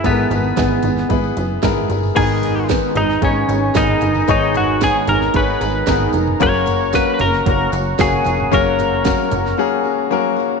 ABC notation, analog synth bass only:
X:1
M:4/4
L:1/16
Q:1/4=113
K:G#m
V:1 name="Analog synth bass" clef=bass
G,,,2 G,,,2 G,,,2 G,,,2 G,,,2 F,,,2 G,,,2 =G,,,2 | G,,,4- G,,, z G,,,2 G,,,2 G,,,2 G,,,2 =G,,,2 | G,,,4- G,,, z G,,,2 G,,,2 G,,,2 G,,,2 ^E,,,2 | F,,,4- F,,, z F,,,2 F,,,2 F,,,2 F,,,2 ^E,,,2 |
F,,,4- F,,, z F,,,2 z8 |]